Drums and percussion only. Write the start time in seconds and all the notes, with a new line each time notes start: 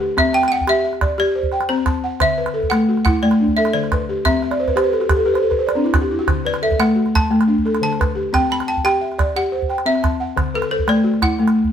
0.18 calabash thump, calabash click
0.43 calabash click
0.61 calabash thump
0.68 calabash click
0.93 calabash click
1.01 calabash thump, calabash click
1.18 calabash click
1.43 calabash thump
1.52 calabash click
1.61 calabash click
1.70 calabash click
1.78 calabash click
1.86 calabash thump, calabash click
2.20 calabash thump, calabash click
2.46 calabash click
2.63 calabash thump
2.71 calabash click
2.97 calabash click
3.06 calabash thump, calabash click
3.22 calabash click
3.31 calabash click
3.48 calabash thump
3.58 calabash click
3.65 calabash click
3.75 calabash click
3.84 calabash click
3.92 calabash thump, calabash click
4.25 calabash thump, calabash click
4.42 calabash click
4.51 calabash click
4.68 calabash thump, calabash click
4.77 calabash click
4.93 calabash click
5.01 calabash click
5.09 calabash thump, calabash click
5.35 calabash click
5.51 calabash thump, calabash click
5.69 calabash click
5.86 calabash click
5.94 calabash thump, calabash click
6.28 calabash thump, calabash click
6.54 calabash click
6.71 calabash thump
6.80 calabash click
7.06 calabash click
7.16 calabash thump, calabash click
7.32 calabash click
7.41 calabash click
7.58 calabash thump
7.67 calabash click
7.75 calabash click
7.83 calabash click
7.93 calabash click
8.01 calabash thump, calabash click
8.34 calabash thump, calabash click
8.60 calabash click
8.77 calabash thump
8.86 calabash click
9.12 calabash click
9.19 calabash thump, calabash click
9.36 calabash click
9.62 calabash thump
9.70 calabash click
9.78 calabash click
9.86 calabash click
9.95 calabash click
10.04 calabash thump, calabash click
10.37 calabash thump, calabash click
10.62 calabash click
10.79 calabash thump
10.88 calabash click
11.14 calabash click
11.22 calabash thump, calabash click
11.39 calabash click
11.48 calabash click
11.64 calabash thump